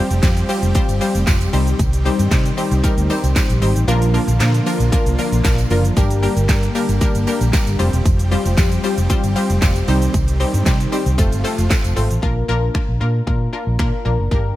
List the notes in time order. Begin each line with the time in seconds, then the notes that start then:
Already playing: F3 G3 C4 F4 G4 C5
0.11 F1, closed hi-hat, shaker
0.23 F2 G3 C4 F4 G4 C5, kick, snare, clap, closed hi-hat, tambourine, shaker
0.37 closed hi-hat, shaker
0.49 G3 C4 F4 G4 C5, open hi-hat, tambourine, shaker
0.63 F1, closed hi-hat, shaker
0.75 G3 C4 F4 G4 C5, kick, closed hi-hat, tambourine, shaker
0.89 G1, closed hi-hat, tambourine, shaker
1.01 G3 C4 F4 G4 C5, open hi-hat, tambourine, shaker
1.15 F1, closed hi-hat, tambourine, shaker
1.27 F1 G3 C4 F4 G4 C5, kick, snare, clap, closed hi-hat, tambourine, shaker
1.41 closed hi-hat, tambourine, shaker
1.53 C2 D#3 G3 C4 D#4 G4 C5, open hi-hat, tambourine, shaker
1.67 closed hi-hat, shaker
1.79 C2, kick, closed hi-hat, tambourine, shaker
1.93 closed hi-hat, shaker
2.05 G3 C4 D#4 G4 C5, open hi-hat, shaker
2.19 G2, closed hi-hat, tambourine, shaker
2.31 C3 G3 C4 D#4 G4 C5, kick, snare, clap, closed hi-hat, tambourine, shaker
2.46 closed hi-hat, shaker
2.57 G3 C4 D#4 G4 C5, open hi-hat, tambourine, shaker
2.71 C2, closed hi-hat, tambourine, shaker
2.83 G3 C4 D#4 G4 A#4, kick, closed hi-hat, tambourine, shaker
2.97 D2, closed hi-hat, shaker
3.10 G3 C4 D#4 G4 C5, open hi-hat, tambourine, shaker
3.24 C2, closed hi-hat, tambourine, shaker
3.36 G3 C4 D#4 G4 C5, kick, snare, clap, closed hi-hat, tambourine, shaker
3.50 A#1, closed hi-hat, tambourine, shaker
3.62 G#1 G3 C4 D#4 G4 C5, open hi-hat, tambourine, shaker
3.76 A1, closed hi-hat, shaker
3.88 A#1 D3 F3 A#3 D4 F4 A#4, closed hi-hat, tambourine, shaker
4.02 closed hi-hat, shaker
4.14 F3 A#3 D4 F4 A#4, open hi-hat, shaker
4.28 A#1, closed hi-hat, tambourine, shaker
4.40 A#2 F3 A#3 D4 F4 A#4, snare, clap, closed hi-hat, tambourine, shaker
4.54 closed hi-hat, shaker
4.66 F3 A#3 D4 F4 A#4, open hi-hat, tambourine, shaker
4.80 A#1, closed hi-hat, tambourine, shaker
4.92 F3 A#3 D4 F4 A#4, kick, closed hi-hat, tambourine, shaker
5.06 C2, closed hi-hat, shaker
5.18 F3 A#3 D4 F4 A#4, open hi-hat, tambourine, shaker
5.32 A#1, closed hi-hat, shaker
5.44 F3 A#3 D4 F4 A#4, kick, snare, clap, closed hi-hat, tambourine, shaker
5.58 closed hi-hat, tambourine, shaker
5.70 F#1 F3 A#3 D4 F4 A#4, open hi-hat, tambourine, shaker
5.85 closed hi-hat, shaker
5.96 G1 D3 G3 A#3 D4 G4 A#4, kick, closed hi-hat, tambourine, shaker
6.11 closed hi-hat, shaker
6.23 G3 A#3 D4 G4 A#4, open hi-hat, shaker
6.37 G1, closed hi-hat, tambourine, shaker
6.49 G2 G3 A#3 D4 G4 A#4, kick, snare, clap, closed hi-hat, tambourine, shaker
6.63 closed hi-hat, shaker
6.75 G3 A#3 D4 G4 A#4, open hi-hat, tambourine, shaker
6.89 G1, closed hi-hat, tambourine, shaker
7.01 G3 A#3 D4 G4 A#4, kick, closed hi-hat, tambourine, shaker
7.15 G1, closed hi-hat, tambourine, shaker
7.27 G3 A#3 D4 G4 A#4, open hi-hat, tambourine, shaker
7.41 A#1, closed hi-hat, tambourine, shaker
7.53 G3 A#3 D4 G4 A#4, kick, snare, clap, closed hi-hat, tambourine, shaker
7.67 G1, closed hi-hat, tambourine, shaker
7.79 F1 F3 G3 C4 F4 G4 C5, open hi-hat, tambourine, shaker
7.93 E1, closed hi-hat, shaker
8.06 F1, kick, closed hi-hat, tambourine, shaker
8.19 closed hi-hat, shaker
8.31 G3 C4 F4 G4 C5, open hi-hat, shaker
8.45 F1, closed hi-hat, tambourine, shaker
8.57 F2 G3 C4 F4 G4 C5, kick, snare, clap, closed hi-hat, tambourine, shaker
8.72 closed hi-hat, shaker
8.84 G3 C4 F4 G4 C5, open hi-hat, tambourine, shaker
8.98 F1, closed hi-hat, tambourine, shaker
9.10 G3 C4 F4 G4 C5, kick, closed hi-hat, tambourine, shaker
9.24 G1, closed hi-hat, tambourine, shaker
9.36 G3 C4 F4 G4 C5, open hi-hat, tambourine, shaker
9.50 F1, closed hi-hat, shaker
9.62 F1 G3 C4 F4 G4 C5, kick, snare, clap, closed hi-hat, tambourine, shaker
9.76 closed hi-hat, tambourine, shaker
9.88 C2 D#3 G3 C4 D#4 G4 C5, open hi-hat, tambourine, shaker
10.02 closed hi-hat, shaker
10.14 C2, kick, closed hi-hat, tambourine, shaker
10.28 closed hi-hat, shaker
10.40 G3 C4 D#4 G4 C5, open hi-hat, shaker
10.54 G2, closed hi-hat, shaker
10.66 C3 G3 C4 D#4 G4 C5, kick, snare, clap, closed hi-hat, tambourine, shaker
10.80 closed hi-hat, shaker
10.92 G3 C4 D#4 G4 C5, open hi-hat, tambourine, shaker
11.06 C2, closed hi-hat, shaker
11.18 F1 C3 F3 A3 C4 F4 A4 C5, kick, closed hi-hat, tambourine, shaker
11.32 G1, closed hi-hat, tambourine, shaker
11.44 A3 C4 F4 A4 C5, open hi-hat, tambourine, shaker
11.58 F1, closed hi-hat, tambourine, shaker
11.70 A3 C4 F4 A4 C5, kick, snare, clap, closed hi-hat, tambourine, shaker
11.84 F1, closed hi-hat, tambourine, shaker
11.96 G#1 A3 C4 F4 A4 C5, open hi-hat, tambourine, shaker
12.11 A1, closed hi-hat, shaker
12.22 A#1 A#3 D4 F4 A#4, kick
12.48 A#1 A#3 D4 F4 A#4
12.74 A#3 D4 F4 A#4, finger snap, kick
12.89 A#1
13.00 A#2 A#3 D4 F4 A#4
13.27 A#2 A#3 D4 F4 A#4, kick
13.53 A#3 D4 F4 A#4
13.67 A#1
13.79 A#2 A#3 D4 F4 A#4, finger snap, kick
14.05 A#1 A#3 D4 F4 A#4
14.19 F#1
14.31 G1 A#3 D4 G4 A#4, kick